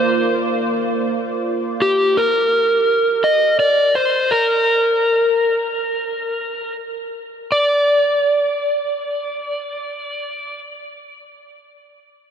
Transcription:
Already playing: A#3 F4 C5 D5
1.82 G4
2.17 A#4
3.24 D#5
3.59 D5
3.95 C5
4.31 A#4
7.52 D5

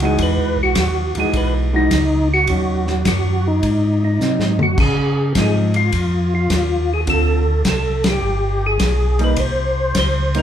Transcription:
Already playing: C#2
0.00 E3 G#3 D#4 F#4, ride
0.05 G#4
0.19 E2, kick, ride
0.23 B4
0.37 D#2
0.56 B1
0.63 F#4
0.75 D#2, kick, snare, hi-hat pedal, ride
1.15 D#2 E3 G#3 D#4 F#4, ride
1.20 G#4
1.33 B1 B4, kick, ride
1.73 E3 G#3 D#4 F#4
1.90 C#2, kick, snare, hi-hat pedal, ride
2.34 F#4
2.47 D#2 D#3 F#3 C#4, kick, ride
2.87 snare
3.05 F#2 F#4, kick, snare, hi-hat pedal, ride
3.47 D#4
3.62 G#2, kick, ride
4.05 D#4
4.19 C3 F#3 C4 D#4, snare, hi-hat pedal
4.39 G#2, snare
4.58 F#2, mid tom
4.63 F#4
4.77 C#3 G#4, kick, crash
5.35 G#2 F3 C4 D#4 G#4, kick, snare, hi-hat pedal, ride
5.74 F4, ride
5.92 F2, kick, ride
6.35 F4
6.50 D#2, kick, snare, hi-hat pedal, ride
6.94 G#4
7.07 D2 D3 C4 F4 A4, kick, ride
7.64 C2, kick, snare, hi-hat pedal, ride
7.69 A4
8.04 snare, ride
8.09 G4
8.21 G1
8.67 G#4
8.79 B1, kick, snare, hi-hat pedal, ride
9.19 G3 A#3 D#4, ride
9.24 B4
9.36 C2 C5, kick, ride
9.95 C#2 C5, kick, snare, hi-hat pedal, ride
10.35 G3 A#3 D#4, ride
10.39 A#4

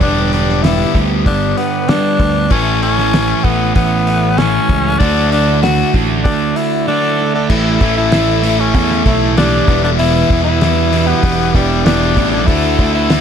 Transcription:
0.01 E1 G2 D3 G3 B3 D4 G4, kick, open hi-hat
0.33 D4, open hi-hat
0.49 snare
0.63 G3 B3 D4 E4 G4, snare, open hi-hat
0.94 D2 G2 D3 G3, kick, open hi-hat
1.26 G1 D4, kick, open hi-hat
1.57 G3 B3 D4 G4, open hi-hat
1.88 G2 D3 G3 B3 D4 G4, snare, open hi-hat
2.20 D2 G3 B3 D4 G4, kick, open hi-hat
2.50 A1 A2 E3 A3 C#4 E4 A4, kick, open hi-hat
2.82 C#4, open hi-hat
2.98 snare
3.13 E3 A3 C#4 E4, snare, open hi-hat
3.44 A1 A2 E3 A3 B3, kick, open hi-hat
3.75 A1 B3, kick, open hi-hat
4.07 A3 C#4 E4, open hi-hat
4.38 A2 E3 A3 C#4 E4, snare, open hi-hat
4.69 C#2 A3 C#4 E4, kick, open hi-hat
4.99 D2 D3 F#3 A3 D4 E4 F#4, kick, open hi-hat
5.32 D4, open hi-hat
5.62 F#3 A3 D4 E4 F#4, snare, open hi-hat
5.94 A1 D3 A3 D4, kick, open hi-hat
6.24 D2 D4, kick, open hi-hat
6.56 A3 D4 E4, open hi-hat
6.87 D3 F#3 A3 D4 E4 A4
7.19 A3 D4 E4
7.35 D4 A4
7.50 A1 A2 E3 A3 C#4 E4 A4, kick, crash
7.81 A1 A2 E3 A3 C#4 E4, kick, open hi-hat
7.97 E4 A4
8.11 A2 E3 A3 C#4 E4, snare, open hi-hat
8.43 A2 E3 A3 C#4 E4, open hi-hat
8.60 C#4 A4
8.74 E2 A2 E3 A3 C#4 E4, kick, open hi-hat
8.91 snare
9.05 B1 A2 E3 A3 C#4 E4, kick, open hi-hat
9.37 A2 E3 A3 C#4 D4 E4 G4, snare, open hi-hat
9.68 E1 E2 B2 E3 G3 B3 E4, kick, open hi-hat
9.84 D4 A4
9.98 E2 B2 E3 G3 B3 E4 B4, open hi-hat
10.30 E2 B2 E3 G3 B3 E4, kick, open hi-hat
10.44 E4 B4
10.61 E2 B2 E3 G3 B3 E4, snare, open hi-hat
10.91 E2 B2 E3 G3 B3 E4, open hi-hat
11.07 B3 G4
11.23 E1 E2 B2 E3 G3 B3 E4, kick, open hi-hat
11.54 E1 E2 B2 E3 G3 B3 D4 E4, kick, open hi-hat
11.85 E2 B2 E3 G3 B3 D4 E4 G4, snare, open hi-hat
12.16 A1 E2 B2 E3 G3 B3 E4, kick, open hi-hat
12.31 D4 A4
12.46 D2 D3 A3 D4 E4 F#4 A4, kick, open hi-hat
12.79 D2 D3 A3 D4 F#4, kick, open hi-hat
12.94 E4 B4
13.10 D3 A3 D4 F#4, snare, open hi-hat

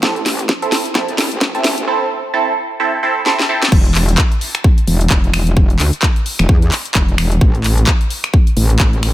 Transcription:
0.03 A1 C4 E4 A4, kick, snare
0.16 closed hi-hat
0.26 snare, open hi-hat
0.39 closed hi-hat
0.49 kick, snare
0.62 C4 E4 A4, closed hi-hat
0.72 snare, open hi-hat
0.85 closed hi-hat
0.95 C2 C4 E4 A4, kick, snare
1.08 closed hi-hat
1.18 snare, open hi-hat
1.32 A1, closed hi-hat
1.41 kick, snare
1.55 C4 E4 A4, closed hi-hat
1.64 snare, open hi-hat
1.78 A1, closed hi-hat
1.87 C4 E4 A4
2.34 C4 E4 A4
2.80 C4 E4 A4
3.03 C4 E4 A4
3.26 C4 E4 A4, snare
3.39 snare
3.49 C4 E4 A4
3.62 snare
3.72 E1, kick, crash
3.85 closed hi-hat
3.95 clap, open hi-hat
4.09 closed hi-hat
4.18 kick, clap
4.32 closed hi-hat
4.41 open hi-hat
4.55 finger snap, closed hi-hat
4.64 kick
4.78 closed hi-hat
4.87 E1, open hi-hat
5.01 closed hi-hat
5.10 E1, kick, clap
5.24 closed hi-hat
5.34 finger snap, open hi-hat
5.47 closed hi-hat
5.57 E1, kick
5.70 closed hi-hat
5.79 D2, clap, open hi-hat
5.93 closed hi-hat
6.02 kick, clap
6.16 closed hi-hat
6.26 open hi-hat
6.39 E1, finger snap, closed hi-hat
6.49 E2, kick
6.62 closed hi-hat
6.72 clap, open hi-hat
6.85 closed hi-hat
6.95 E1, kick, clap
7.09 closed hi-hat
7.18 E1, finger snap, open hi-hat
7.32 closed hi-hat
7.41 A1, kick
7.55 closed hi-hat
7.64 clap, open hi-hat
7.78 closed hi-hat
7.87 kick, clap
8.01 closed hi-hat
8.10 open hi-hat
8.24 finger snap, closed hi-hat
8.34 kick
8.47 closed hi-hat
8.57 A1, open hi-hat
8.70 closed hi-hat
8.79 A1, kick, clap
8.93 closed hi-hat
9.03 finger snap, open hi-hat

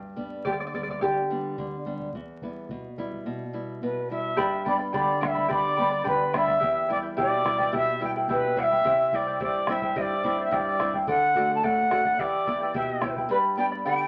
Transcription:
Already playing: G2
0.16 G3 B3 D4, bombo low
0.45 D3 G4 D5, bombo low
0.52 D5
0.60 D5
0.67 D5
0.74 G3 B3 D4 D5, bombo low
0.83 D5
0.88 D5, bombo low
1.01 D3 G4 D5, bombo low
1.30 G3 B3 D4
1.58 D3, bombo low
1.86 G3 B3 D4, bombo low
2.00 bombo low
2.13 E2, bombo low
2.41 G3 B3 E4, bombo low
2.69 B2, bombo low
2.98 G3 B3 E4, bombo low
3.12 bombo low
3.26 B2
3.53 G3 B3 E4
3.82 B2 B4
4.10 G3 B3 E4 E5
4.37 G2 G4 B4 D5 G5 B5, bombo low
4.65 G3 B3 D4 B4 D5 G5 B5, bombo low
4.78 B4 D5 B5
4.93 D3 G4 B4 D5 G5 B5, bombo low
5.21 G3 B3 D4 B4 D5 F#5 G5 B5, bombo rim, bombo low
5.27 E5
5.34 B4 D5 B5, bombo low
5.48 D3 G4 B4 D5 G5 B5, bombo low
5.76 G3 B3 D4 B4 D5 G5 B5, bombo low
5.90 B4 D5 B5
6.04 D3 G4 B4 D5 G5 B5, bombo low
6.33 G3 B3 D4 B4 D5 E5 G5 B5, bombo rim, bombo low
6.47 B4 D5 B5, bombo low
6.60 E2 E4 G4 B4 E5 G5, bombo low
6.88 G3 B3 E4 B4 D5 E5 G5, bombo low
7.03 E4 B4 G5
7.17 B2 E4 G4 B4 D5 E5 G5, bombo low
7.44 G3 B3 E4 B4 E5 G5, bombo rim, bombo low
7.58 E4 B4 G5, bombo low
7.72 B2 E4 G4 B4 E5 G5, bombo low
7.76 E5
8.00 G3 B3 E4 B4 E5 G5, bombo low
8.04 G5
8.16 E4 B4 G5
8.29 B2 E4 G4 B4 E5 G5, bombo low
8.56 G3 B3 E4 B4 E5 F#5 G5, bombo low
8.62 E5
8.71 E4 B4 G5, bombo low
8.84 C3 E4 G4 C5 E5 G5, bombo low
9.12 G3 C4 E4 C5 D5 E5 G5, bombo low
9.27 E4 C5 G5
9.40 G2 E4 G4 C5 D5 E5 G5, bombo low
9.67 G3 C4 E4 C5 E5 G5, bombo rim, bombo low
9.81 E4 C5 G5, bombo low
9.96 G2 E4 G4 C5 D#5 E5 G5, bombo low
10.01 D5
10.23 G3 C4 E4 C5 E5 G5, bombo low
10.38 E4 C5 G5
10.43 E5
10.51 G2 E4 G4 C5 D5 E5 G5, bombo low
10.79 G3 C4 E4 C5 E5 G5, bombo rim, bombo low
10.93 E4 C5 G5, bombo low
11.07 D3 A4 D5 F#5, bombo low
11.34 A3 D4 F#4 A4 D5 F#5, bombo low
11.50 D5 F#5
11.55 A5
11.63 A2 A4 D5 F#5, bombo low
11.91 A3 D4 F#4 A4 D5 F#5, bombo rim, bombo low
12.05 D5 F#5, bombo low
12.19 E3 E4 G4 B4 D5 E5 G5, bombo low
12.47 B3 E4 G4 B4 E5 G5, bombo low
12.61 E4 B4 G5
12.74 B2 E4 G4 B4 E5 G5, bombo low
13.01 B3 E4 G4 B4 E5 G5, bombo rim, bombo low
13.16 E4 B4 G5, bombo low
13.29 G2 G4 B4 D5 G5 B5
13.57 B3 D4 G4 B4 D5 G5 B5
13.71 B4 D5 B5
13.85 D3 G4 B4 D5 G5 B5

